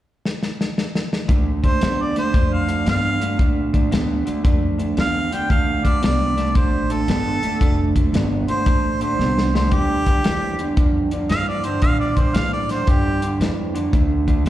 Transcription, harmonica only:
0, 0, Header, 1, 2, 480
1, 0, Start_track
1, 0, Key_signature, -1, "minor"
1, 0, Tempo, 526778
1, 1175, Time_signature, 4, 2, 24, 8
1, 13204, End_track
2, 0, Start_track
2, 0, Title_t, "Harmonica"
2, 0, Program_c, 0, 22
2, 1504, Note_on_c, 0, 72, 86
2, 1840, Note_on_c, 0, 74, 71
2, 1854, Note_off_c, 0, 72, 0
2, 1983, Note_off_c, 0, 74, 0
2, 1992, Note_on_c, 0, 72, 83
2, 2314, Note_on_c, 0, 77, 69
2, 2328, Note_off_c, 0, 72, 0
2, 2615, Note_off_c, 0, 77, 0
2, 2637, Note_on_c, 0, 77, 84
2, 3091, Note_off_c, 0, 77, 0
2, 4558, Note_on_c, 0, 77, 92
2, 4858, Note_on_c, 0, 79, 80
2, 4871, Note_off_c, 0, 77, 0
2, 5013, Note_off_c, 0, 79, 0
2, 5017, Note_on_c, 0, 77, 75
2, 5330, Note_on_c, 0, 74, 83
2, 5343, Note_off_c, 0, 77, 0
2, 5489, Note_off_c, 0, 74, 0
2, 5506, Note_on_c, 0, 74, 81
2, 5973, Note_on_c, 0, 72, 74
2, 5987, Note_off_c, 0, 74, 0
2, 6303, Note_on_c, 0, 69, 89
2, 6317, Note_off_c, 0, 72, 0
2, 7228, Note_off_c, 0, 69, 0
2, 7744, Note_on_c, 0, 72, 93
2, 8203, Note_off_c, 0, 72, 0
2, 8224, Note_on_c, 0, 72, 76
2, 8683, Note_off_c, 0, 72, 0
2, 8711, Note_on_c, 0, 72, 74
2, 8867, Note_on_c, 0, 67, 90
2, 8880, Note_off_c, 0, 72, 0
2, 9792, Note_off_c, 0, 67, 0
2, 10307, Note_on_c, 0, 77, 103
2, 10457, Note_off_c, 0, 77, 0
2, 10464, Note_on_c, 0, 74, 82
2, 10614, Note_on_c, 0, 72, 81
2, 10628, Note_off_c, 0, 74, 0
2, 10768, Note_off_c, 0, 72, 0
2, 10773, Note_on_c, 0, 77, 97
2, 10927, Note_off_c, 0, 77, 0
2, 10933, Note_on_c, 0, 74, 78
2, 11091, Note_on_c, 0, 72, 81
2, 11104, Note_off_c, 0, 74, 0
2, 11261, Note_on_c, 0, 77, 96
2, 11275, Note_off_c, 0, 72, 0
2, 11414, Note_off_c, 0, 77, 0
2, 11419, Note_on_c, 0, 74, 79
2, 11572, Note_off_c, 0, 74, 0
2, 11580, Note_on_c, 0, 72, 79
2, 11753, Note_on_c, 0, 67, 84
2, 11767, Note_off_c, 0, 72, 0
2, 12211, Note_off_c, 0, 67, 0
2, 13204, End_track
0, 0, End_of_file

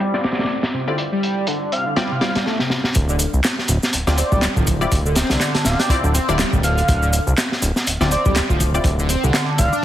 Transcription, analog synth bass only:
0, 0, Header, 1, 2, 480
1, 0, Start_track
1, 0, Key_signature, -1, "minor"
1, 0, Tempo, 491803
1, 958, Time_signature, 4, 2, 24, 8
1, 9609, End_track
2, 0, Start_track
2, 0, Title_t, "Analog synth bass"
2, 0, Program_c, 0, 38
2, 2885, Note_on_c, 0, 26, 98
2, 3185, Note_off_c, 0, 26, 0
2, 3254, Note_on_c, 0, 36, 86
2, 3323, Note_off_c, 0, 36, 0
2, 3599, Note_on_c, 0, 26, 90
2, 3690, Note_off_c, 0, 26, 0
2, 3840, Note_on_c, 0, 26, 43
2, 3949, Note_off_c, 0, 26, 0
2, 3974, Note_on_c, 0, 26, 104
2, 4123, Note_off_c, 0, 26, 0
2, 4216, Note_on_c, 0, 26, 99
2, 4364, Note_off_c, 0, 26, 0
2, 4454, Note_on_c, 0, 26, 99
2, 4743, Note_off_c, 0, 26, 0
2, 4800, Note_on_c, 0, 26, 95
2, 5103, Note_off_c, 0, 26, 0
2, 5174, Note_on_c, 0, 36, 86
2, 5243, Note_off_c, 0, 36, 0
2, 5517, Note_on_c, 0, 26, 90
2, 5609, Note_off_c, 0, 26, 0
2, 5893, Note_on_c, 0, 26, 105
2, 6043, Note_off_c, 0, 26, 0
2, 6134, Note_on_c, 0, 26, 99
2, 6283, Note_off_c, 0, 26, 0
2, 6372, Note_on_c, 0, 26, 103
2, 6662, Note_off_c, 0, 26, 0
2, 6720, Note_on_c, 0, 26, 98
2, 7023, Note_off_c, 0, 26, 0
2, 7094, Note_on_c, 0, 36, 86
2, 7163, Note_off_c, 0, 36, 0
2, 7437, Note_on_c, 0, 26, 90
2, 7529, Note_off_c, 0, 26, 0
2, 7680, Note_on_c, 0, 26, 44
2, 7789, Note_off_c, 0, 26, 0
2, 7815, Note_on_c, 0, 26, 102
2, 7964, Note_off_c, 0, 26, 0
2, 8058, Note_on_c, 0, 26, 100
2, 8205, Note_off_c, 0, 26, 0
2, 8290, Note_on_c, 0, 26, 103
2, 8581, Note_off_c, 0, 26, 0
2, 8629, Note_on_c, 0, 26, 97
2, 8938, Note_off_c, 0, 26, 0
2, 9015, Note_on_c, 0, 36, 86
2, 9084, Note_off_c, 0, 36, 0
2, 9356, Note_on_c, 0, 26, 91
2, 9449, Note_off_c, 0, 26, 0
2, 9609, End_track
0, 0, End_of_file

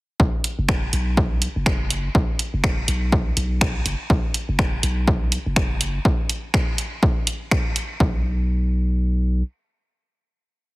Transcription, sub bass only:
0, 0, Header, 1, 2, 480
1, 0, Start_track
1, 0, Tempo, 487805
1, 195, Time_signature, 4, 2, 24, 8
1, 10578, End_track
2, 0, Start_track
2, 0, Title_t, "Sub bass"
2, 0, Program_c, 0, 38
2, 194, Note_on_c, 0, 35, 88
2, 284, Note_off_c, 0, 35, 0
2, 577, Note_on_c, 0, 30, 79
2, 857, Note_off_c, 0, 30, 0
2, 915, Note_on_c, 0, 35, 95
2, 1453, Note_off_c, 0, 35, 0
2, 1536, Note_on_c, 0, 30, 86
2, 2057, Note_off_c, 0, 30, 0
2, 2114, Note_on_c, 0, 35, 94
2, 2204, Note_off_c, 0, 35, 0
2, 2497, Note_on_c, 0, 30, 83
2, 2777, Note_off_c, 0, 30, 0
2, 2835, Note_on_c, 0, 35, 99
2, 3257, Note_off_c, 0, 35, 0
2, 3314, Note_on_c, 0, 35, 79
2, 3737, Note_off_c, 0, 35, 0
2, 3794, Note_on_c, 0, 30, 88
2, 3884, Note_off_c, 0, 30, 0
2, 4034, Note_on_c, 0, 35, 93
2, 4124, Note_off_c, 0, 35, 0
2, 4416, Note_on_c, 0, 30, 84
2, 4696, Note_off_c, 0, 30, 0
2, 4754, Note_on_c, 0, 35, 99
2, 5293, Note_off_c, 0, 35, 0
2, 5376, Note_on_c, 0, 30, 88
2, 5896, Note_off_c, 0, 30, 0
2, 7874, Note_on_c, 0, 35, 94
2, 9275, Note_off_c, 0, 35, 0
2, 10578, End_track
0, 0, End_of_file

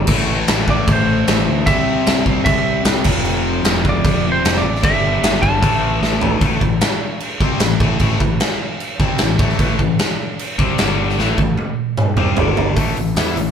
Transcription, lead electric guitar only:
0, 0, Header, 1, 2, 480
1, 0, Start_track
1, 0, Key_signature, 0, "minor"
1, 0, Tempo, 396563
1, 99, Time_signature, 4, 2, 24, 8
1, 16353, End_track
2, 0, Start_track
2, 0, Title_t, "Lead electric guitar"
2, 0, Program_c, 0, 29
2, 851, Note_on_c, 0, 74, 93
2, 1081, Note_off_c, 0, 74, 0
2, 1119, Note_on_c, 0, 72, 80
2, 2013, Note_on_c, 0, 76, 120
2, 2076, Note_off_c, 0, 72, 0
2, 2686, Note_off_c, 0, 76, 0
2, 2964, Note_on_c, 0, 76, 99
2, 3416, Note_off_c, 0, 76, 0
2, 4711, Note_on_c, 0, 74, 89
2, 5205, Note_off_c, 0, 74, 0
2, 5227, Note_on_c, 0, 72, 86
2, 5538, Note_on_c, 0, 74, 88
2, 5550, Note_off_c, 0, 72, 0
2, 5859, Note_off_c, 0, 74, 0
2, 5864, Note_on_c, 0, 76, 113
2, 6530, Note_off_c, 0, 76, 0
2, 6560, Note_on_c, 0, 81, 108
2, 7478, Note_off_c, 0, 81, 0
2, 16353, End_track
0, 0, End_of_file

